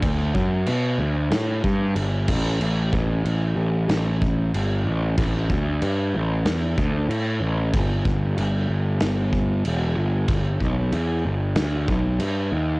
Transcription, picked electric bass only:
\new Staff \with { instrumentName = "Picked electric bass" } { \clef bass \time 4/4 \key d \mixolydian \tempo 4 = 94 d,8 fis,8 b,8 d,8 a,8 g,8 g,,8 a,,8 | a,,8 a,,8 a,,8 a,,8 a,,4 g,,8 a,,8 | a,,8 d,8 g,8 a,,8 e,8 d,8 a,8 a,,8 | g,,8 g,,8 g,,8 g,,8 g,,4 e,,8 g,,8 |
g,,8 b,,8 e,8 g,,8 d,8 b,,8 g,8 dis,8 | }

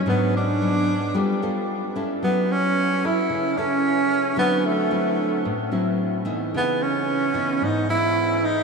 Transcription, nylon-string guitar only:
\new Staff \with { instrumentName = "Nylon-string guitar" } { \time 4/4 \key cis \minor \tempo 4 = 111 << { <fis b d'>4 <fis b d'>8 r8 <b f' a'>8 <b f' a'>4 <cis' e' a'>8~ | <cis' e' a'>4. <cis' e' a'>4 <cis' e' a'>4. | <fis c' e'>4 <fis c' e'>4 r8 <fis c' e'>4 <e b dis'>8~ | <e b dis'>4. <e b dis'>4 <e b>4. | } \\ { gis,2 g2 | fis2 cis2 | d2 a,2 | cis2 gis,2 | } >> }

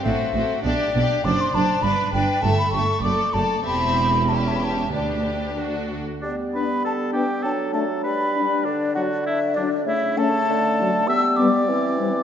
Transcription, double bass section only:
\new Staff \with { instrumentName = "Double bass section" } { \clef bass \time 2/4 \key g \mixolydian \tempo 4 = 99 a,,8 a,,8 b,,8 b,,8 | \key g \major fis,,8 fis,,8 g,,8 g,,8 | g,,8 g,,8 fis,,8 fis,,8 | e,,2 |
d,4. r8 | r2 | r2 | r2 |
r2 | r2 | }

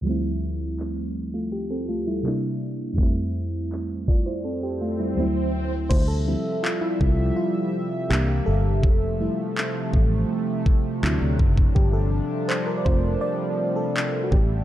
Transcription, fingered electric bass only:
\new Staff \with { instrumentName = "Fingered electric bass" } { \clef bass \time 4/4 \key d \minor \tempo 4 = 82 r1 | r1 | d,8. r8. c,8 r4 c,8 g,,8 | f,,8. r8. a,,8 r4 d,16 d,16 fis,,8 |
g,,8. r8. f,,8 r4. a,,8 | }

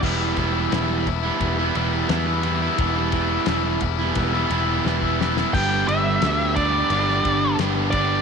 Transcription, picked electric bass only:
\new Staff \with { instrumentName = "Picked electric bass" } { \clef bass \time 4/4 \key e \minor \tempo 4 = 87 e,,8 e,,8 e,,4 e,,8 e,,8 e,4 | e,,4 e,,8 e,,8 e,,8 e,,8 e,,4 | g,,8 g,,8 d,4 g,,8 g,,8 g,,4 | }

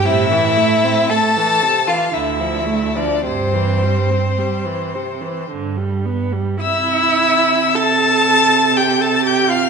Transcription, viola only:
\new Staff \with { instrumentName = "Viola" } { \clef bass \time 3/4 \key c \major \tempo 4 = 55 c16 e16 a16 c'16 a16 e16 c16 e16 d16 f16 a16 f16 | c16 e16 g16 c'16 g16 e16 c16 e16 d16 g16 b16 g16 | e'4 a'4 g'16 a'16 g'16 f'16 | }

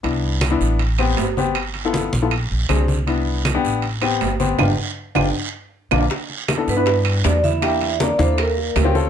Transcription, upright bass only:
\new Staff \with { instrumentName = "Upright bass" } { \clef bass \time 4/4 \key c \major \tempo 4 = 158 c,4. a,,4. g,,4~ | g,,4. bes,,4 bes,,8 c,4~ | c,4. a,,4. g,,4 | g,,8 r4 g,,8 r4. bes,,8 |
r4. g,4. e,4~ | e,4. ees,4. d,4 | }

